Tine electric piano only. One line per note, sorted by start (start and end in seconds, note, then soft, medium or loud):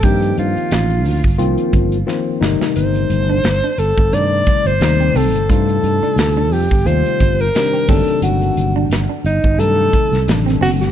0.03 1.17 D#3 medium
0.03 1.17 F3 medium
0.03 1.16 A#3 medium
0.03 1.17 C4 medium
0.03 1.17 D#4 medium
1.38 1.97 D#3 medium
1.38 1.97 F3 medium
1.38 1.97 A#3 medium
1.38 1.97 C4 medium
1.38 1.96 F4 loud
2.07 2.40 D#3 medium
2.07 2.42 F3 medium
2.07 2.41 A#3 medium
2.07 2.41 C4 medium
2.07 2.42 F4 medium
2.41 3.55 C3 medium
2.41 3.55 D#3 medium
2.41 3.55 G3 medium
2.41 3.55 A3 medium
2.41 3.55 D#4 medium
4.13 4.70 C3 medium
4.13 4.71 D#3 medium
4.13 4.71 G3 medium
4.13 4.71 A3 medium
4.13 4.71 D#4 medium
4.81 5.39 C3 medium
4.81 5.39 D#3 medium
4.81 5.39 G3 medium
4.81 5.39 A3 medium
4.81 5.39 D#4 medium
5.49 6.63 C3 medium
5.49 6.63 G3 medium
5.49 6.63 A3 medium
5.49 6.63 D#4 medium
5.49 6.63 F4 medium
6.86 7.44 C3 medium
6.86 7.44 D#3 medium
6.86 7.44 G3 medium
6.86 7.44 A3 medium
6.86 7.44 F4 medium
7.55 7.87 C3 medium
7.55 7.87 D#3 medium
7.55 7.89 G3 medium
7.55 7.89 C4 medium
7.55 7.87 D4 medium
7.88 9.02 C3 medium
7.88 9.02 D#3 medium
7.88 9.02 F#3 medium
7.88 9.02 A3 medium
7.88 9.02 D4 medium
9.59 10.17 C3 medium
9.59 10.17 D#3 medium
9.59 10.17 F#3 medium
9.59 10.17 A3 medium
9.59 10.17 D#4 medium
10.28 10.85 C3 medium
10.28 10.86 D#3 medium
10.28 10.85 F#3 medium
10.28 10.85 A3 medium
10.28 10.85 D4 medium